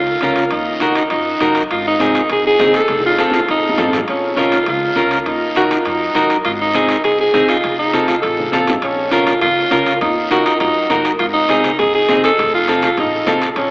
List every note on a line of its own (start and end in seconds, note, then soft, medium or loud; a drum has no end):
0.00 0.17 C#2 medium
0.00 0.21 F4 medium
0.21 0.46 C#2 medium
0.21 0.43 C#4 medium
0.21 0.43 F4 medium
0.21 0.51 F4 medium
0.21 0.44 A#4 medium
0.21 high conga medium
0.21 high timbale medium
0.21 short guiro medium
0.36 high timbale medium
0.36 short guiro medium
0.51 0.99 D#2 medium
0.51 0.83 D#4 medium
0.51 high timbale medium
0.51 long guiro medium
0.80 1.02 D#4 medium
0.80 1.02 F#4 medium
0.80 0.96 F#4 medium
0.80 1.03 A#4 medium
0.80 high conga medium
0.80 high timbale medium
0.80 short guiro medium
0.95 1.10 D#4 medium
0.95 high timbale medium
0.95 short guiro medium
1.10 1.35 F#2 medium
1.10 1.52 D#4 medium
1.10 high timbale medium
1.10 long guiro medium
1.41 1.65 F#2 medium
1.41 1.62 D#4 medium
1.41 1.62 F#4 medium
1.41 1.62 A#4 medium
1.41 high conga medium
1.41 high timbale medium
1.41 short guiro medium
1.55 high timbale medium
1.55 short guiro medium
1.71 2.18 G#1 medium
1.71 1.85 F4 medium
1.71 high timbale medium
1.71 long guiro medium
1.87 2.28 D#4 medium
2.00 2.21 C4 medium
2.00 2.21 D#4 medium
2.00 2.21 G#4 medium
2.00 high conga medium
2.00 high timbale medium
2.00 short guiro medium
2.15 high timbale medium
2.15 short guiro medium
2.30 2.54 C2 medium
2.30 2.45 G#4 loud
2.30 high timbale medium
2.30 long guiro medium
2.47 2.73 G#4 loud
2.59 2.83 F#1 medium
2.59 2.80 C4 medium
2.59 2.80 D#4 medium
2.59 2.81 G#4 medium
2.59 high conga medium
2.59 high timbale medium
2.59 low timbale medium
2.59 short guiro medium
2.74 3.03 A4 loud
2.74 high timbale medium
2.74 short guiro medium
2.88 3.37 F1 medium
2.88 high conga medium
2.88 high timbale medium
2.88 long guiro medium
3.00 high conga loud
3.06 3.33 F4 medium
3.10 high conga medium
3.18 3.39 C4 medium
3.18 3.40 F4 medium
3.18 3.40 A4 medium
3.18 high conga medium
3.18 high timbale medium
3.18 short guiro medium
3.30 low conga medium
3.30 high timbale medium
3.30 short guiro medium
3.35 3.48 F4 medium
3.39 high conga medium
3.48 3.72 A1 medium
3.48 3.91 D#4 medium
3.48 high timbale medium
3.48 long guiro medium
3.69 low conga medium
3.78 4.02 A1 medium
3.78 3.99 C4 medium
3.78 3.99 F4 soft
3.78 3.99 A4 medium
3.78 low conga medium
3.78 high timbale medium
3.78 short guiro medium
3.88 low conga medium
3.93 high timbale medium
3.93 short guiro medium
3.98 low conga medium
4.08 4.56 A#1 medium
4.08 4.41 C#4 medium
4.08 high timbale medium
4.08 long guiro medium
4.37 4.58 C#4 medium
4.37 4.58 F4 medium
4.37 4.68 F4 medium
4.37 4.58 A#4 medium
4.37 high conga medium
4.37 high timbale medium
4.37 short guiro medium
4.52 high conga medium
4.52 high timbale medium
4.52 short guiro medium
4.66 4.91 C#2 medium
4.66 4.96 F4 medium
4.66 high timbale medium
4.66 long guiro medium
4.96 5.21 C#2 medium
4.96 5.17 C#4 medium
4.96 5.17 F4 medium
4.96 5.28 F4 medium
4.96 5.18 A#4 medium
4.96 high conga medium
4.96 high timbale medium
4.96 short guiro medium
5.11 high timbale medium
5.11 short guiro medium
5.26 5.74 D#2 medium
5.26 5.56 D#4 medium
5.26 high timbale medium
5.26 long guiro medium
5.56 5.77 D#4 medium
5.56 5.77 F#4 medium
5.56 5.63 F#4 medium
5.56 5.78 A#4 medium
5.56 high conga medium
5.56 high timbale medium
5.56 short guiro medium
5.71 high conga medium
5.71 high timbale medium
5.71 short guiro medium
5.78 5.87 F4 medium
5.85 6.10 F#2 medium
5.85 6.30 D#4 medium
5.85 high timbale medium
5.85 long guiro medium
6.15 6.40 F#2 medium
6.15 6.36 D#4 medium
6.15 6.36 F#4 medium
6.15 6.37 A#4 medium
6.15 high conga medium
6.15 high timbale medium
6.15 short guiro medium
6.30 high timbale medium
6.30 short guiro medium
6.45 6.93 G#1 medium
6.45 6.52 F4 medium
6.45 high timbale medium
6.45 long guiro medium
6.61 7.02 D#4 medium
6.74 6.96 C4 medium
6.74 6.96 D#4 medium
6.74 6.96 G#4 medium
6.74 high conga medium
6.74 high timbale medium
6.74 short guiro medium
6.89 high timbale medium
6.89 short guiro medium
7.04 7.28 C2 medium
7.04 7.18 G#4 medium
7.04 high timbale medium
7.04 long guiro medium
7.20 7.48 G#4 medium
7.34 7.58 C2 medium
7.34 7.55 C4 medium
7.34 7.55 D#4 medium
7.34 7.55 G#4 medium
7.34 high conga medium
7.34 high timbale medium
7.34 short guiro medium
7.49 7.77 F4 medium
7.49 high timbale medium
7.49 short guiro medium
7.64 8.12 F1 medium
7.64 high timbale medium
7.64 long guiro medium
7.79 8.10 D#4 medium
7.93 8.14 C4 medium
7.93 8.15 F4 medium
7.93 8.15 A4 medium
7.93 high conga medium
7.93 high timbale medium
7.93 short guiro medium
8.08 8.21 F4 medium
8.08 high conga medium
8.08 high timbale medium
8.08 short guiro medium
8.22 8.47 A1 medium
8.22 8.64 A4 medium
8.22 high timbale medium
8.22 long guiro medium
8.40 high conga medium
8.52 8.77 A1 medium
8.52 8.73 C4 medium
8.52 8.74 F4 medium
8.52 8.74 A4 medium
8.52 high conga medium
8.52 high timbale medium
8.52 low timbale medium
8.52 short guiro medium
8.67 low conga medium
8.67 high timbale medium
8.67 short guiro medium
8.82 9.30 A#1 medium
8.82 9.14 C#4 medium
8.82 high timbale medium
8.82 long guiro medium
9.11 9.33 C#4 medium
9.11 9.33 F4 medium
9.11 9.26 F4 medium
9.11 9.33 A#4 medium
9.11 high conga medium
9.11 high timbale medium
9.11 short guiro medium
9.26 9.40 F4 medium
9.26 high conga medium
9.26 high timbale medium
9.26 short guiro medium
9.41 9.66 C#2 medium
9.41 9.69 F4 loud
9.41 low conga medium
9.41 high timbale medium
9.41 long guiro medium
9.71 9.95 C#2 medium
9.71 9.92 C#4 medium
9.71 9.92 F4 medium
9.71 10.00 F4 medium
9.71 9.93 A#4 medium
9.71 high conga medium
9.71 high timbale medium
9.71 short guiro medium
9.86 high timbale medium
9.86 short guiro medium
10.01 10.49 D#2 medium
10.01 10.29 D#4 medium
10.01 low conga medium
10.01 high timbale medium
10.01 long guiro medium
10.31 10.52 D#4 medium
10.31 10.45 F#4 medium
10.31 10.52 F#4 medium
10.31 10.52 A#4 medium
10.31 high conga medium
10.31 high timbale medium
10.31 short guiro medium
10.46 10.60 D#4 medium
10.46 high timbale medium
10.46 short guiro medium
10.60 10.85 F#2 medium
10.60 11.02 D#4 medium
10.60 low conga medium
10.60 high timbale medium
10.60 long guiro medium
10.90 11.14 F#2 medium
10.90 11.11 D#4 medium
10.90 11.11 F#4 medium
10.90 11.11 A#4 medium
10.90 high conga medium
10.90 high timbale medium
10.90 low timbale medium
10.90 short guiro medium
11.05 high timbale medium
11.05 short guiro medium
11.19 11.68 G#1 medium
11.19 11.26 F4 medium
11.19 high timbale medium
11.19 long guiro medium
11.34 11.75 D#4 loud
11.49 11.70 C4 medium
11.49 11.70 D#4 medium
11.49 11.71 G#4 medium
11.49 high conga medium
11.49 high timbale medium
11.49 short guiro medium
11.64 high conga medium
11.64 high timbale medium
11.64 short guiro medium
11.79 12.03 C2 medium
11.79 11.93 G#4 medium
11.79 low conga medium
11.79 high timbale medium
11.79 long guiro medium
11.95 12.22 G#4 loud
12.09 12.33 F#1 medium
12.09 12.30 C4 medium
12.09 12.30 D#4 medium
12.09 12.30 G#4 medium
12.09 high conga medium
12.09 high timbale medium
12.09 low timbale medium
12.09 short guiro medium
12.24 12.52 A4 loud
12.24 high timbale medium
12.24 short guiro medium
12.37 12.86 F1 medium
12.37 low conga medium
12.37 high timbale medium
12.37 long guiro medium
12.54 12.81 F4 medium
12.68 12.89 C4 medium
12.68 12.89 F4 medium
12.68 12.89 A4 medium
12.68 high conga medium
12.68 high timbale medium
12.68 short guiro medium
12.82 12.98 F4 medium
12.82 high conga medium
12.82 high timbale medium
12.82 short guiro medium
12.97 13.21 A1 medium
12.97 13.40 D#4 medium
12.97 low conga medium
12.97 high timbale medium
12.97 long guiro medium
13.26 13.51 A1 medium
13.26 13.48 C4 medium
13.26 13.48 F4 medium
13.26 13.48 A4 medium
13.26 high conga medium
13.26 high timbale medium
13.26 low timbale medium
13.26 short guiro medium
13.42 high timbale medium
13.42 short guiro medium
13.56 13.71 A#1 medium
13.56 13.71 C#4 medium
13.56 high timbale medium
13.56 long guiro medium